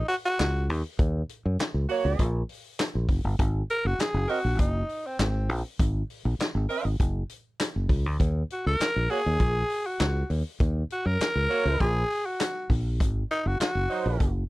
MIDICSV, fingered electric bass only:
0, 0, Header, 1, 3, 480
1, 0, Start_track
1, 0, Tempo, 600601
1, 794, Time_signature, 4, 2, 24, 8
1, 11582, End_track
2, 0, Start_track
2, 0, Title_t, "Fingered electric bass"
2, 0, Program_c, 0, 33
2, 318, Note_on_c, 0, 37, 89
2, 558, Note_off_c, 0, 37, 0
2, 558, Note_on_c, 0, 39, 92
2, 651, Note_off_c, 0, 39, 0
2, 792, Note_on_c, 0, 39, 112
2, 971, Note_off_c, 0, 39, 0
2, 1163, Note_on_c, 0, 42, 95
2, 1246, Note_off_c, 0, 42, 0
2, 1392, Note_on_c, 0, 37, 87
2, 1479, Note_off_c, 0, 37, 0
2, 1637, Note_on_c, 0, 37, 99
2, 1722, Note_off_c, 0, 37, 0
2, 1753, Note_on_c, 0, 34, 92
2, 1931, Note_off_c, 0, 34, 0
2, 2359, Note_on_c, 0, 34, 82
2, 2443, Note_off_c, 0, 34, 0
2, 2467, Note_on_c, 0, 30, 87
2, 2563, Note_off_c, 0, 30, 0
2, 2593, Note_on_c, 0, 31, 83
2, 2680, Note_off_c, 0, 31, 0
2, 2711, Note_on_c, 0, 32, 112
2, 2890, Note_off_c, 0, 32, 0
2, 3076, Note_on_c, 0, 30, 102
2, 3161, Note_off_c, 0, 30, 0
2, 3310, Note_on_c, 0, 30, 99
2, 3397, Note_off_c, 0, 30, 0
2, 3553, Note_on_c, 0, 34, 94
2, 3673, Note_off_c, 0, 34, 0
2, 3673, Note_on_c, 0, 30, 97
2, 3850, Note_off_c, 0, 30, 0
2, 4149, Note_on_c, 0, 32, 98
2, 4389, Note_off_c, 0, 32, 0
2, 4389, Note_on_c, 0, 34, 104
2, 4484, Note_off_c, 0, 34, 0
2, 4633, Note_on_c, 0, 32, 107
2, 4810, Note_off_c, 0, 32, 0
2, 4996, Note_on_c, 0, 34, 103
2, 5081, Note_off_c, 0, 34, 0
2, 5232, Note_on_c, 0, 32, 95
2, 5319, Note_off_c, 0, 32, 0
2, 5473, Note_on_c, 0, 32, 84
2, 5559, Note_off_c, 0, 32, 0
2, 5592, Note_on_c, 0, 30, 86
2, 5770, Note_off_c, 0, 30, 0
2, 6200, Note_on_c, 0, 30, 78
2, 6283, Note_off_c, 0, 30, 0
2, 6306, Note_on_c, 0, 37, 91
2, 6441, Note_off_c, 0, 37, 0
2, 6441, Note_on_c, 0, 38, 83
2, 6524, Note_off_c, 0, 38, 0
2, 6551, Note_on_c, 0, 39, 114
2, 6729, Note_off_c, 0, 39, 0
2, 6924, Note_on_c, 0, 37, 99
2, 7005, Note_off_c, 0, 37, 0
2, 7163, Note_on_c, 0, 34, 91
2, 7245, Note_off_c, 0, 34, 0
2, 7403, Note_on_c, 0, 39, 94
2, 7485, Note_off_c, 0, 39, 0
2, 7511, Note_on_c, 0, 34, 102
2, 7689, Note_off_c, 0, 34, 0
2, 7992, Note_on_c, 0, 37, 96
2, 8169, Note_off_c, 0, 37, 0
2, 8231, Note_on_c, 0, 39, 88
2, 8325, Note_off_c, 0, 39, 0
2, 8473, Note_on_c, 0, 39, 122
2, 8650, Note_off_c, 0, 39, 0
2, 8836, Note_on_c, 0, 42, 85
2, 8920, Note_off_c, 0, 42, 0
2, 9075, Note_on_c, 0, 37, 80
2, 9159, Note_off_c, 0, 37, 0
2, 9313, Note_on_c, 0, 37, 92
2, 9398, Note_off_c, 0, 37, 0
2, 9437, Note_on_c, 0, 34, 102
2, 9612, Note_off_c, 0, 34, 0
2, 10149, Note_on_c, 0, 34, 101
2, 10394, Note_off_c, 0, 34, 0
2, 10394, Note_on_c, 0, 32, 114
2, 10570, Note_off_c, 0, 32, 0
2, 10755, Note_on_c, 0, 30, 93
2, 10839, Note_off_c, 0, 30, 0
2, 10990, Note_on_c, 0, 30, 88
2, 11076, Note_off_c, 0, 30, 0
2, 11233, Note_on_c, 0, 34, 102
2, 11318, Note_off_c, 0, 34, 0
2, 11351, Note_on_c, 0, 30, 89
2, 11529, Note_off_c, 0, 30, 0
2, 11582, End_track
3, 0, Start_track
3, 0, Title_t, "Muted fingered electric bass strokes"
3, 1270, Note_on_c, 9, 29, 43
3, 1349, Note_off_c, 9, 29, 0
3, 3185, Note_on_c, 9, 29, 48
3, 3265, Note_off_c, 9, 29, 0
3, 5106, Note_on_c, 9, 29, 52
3, 5186, Note_off_c, 9, 29, 0
3, 8949, Note_on_c, 9, 29, 50
3, 9029, Note_off_c, 9, 29, 0
3, 11582, End_track
0, 0, End_of_file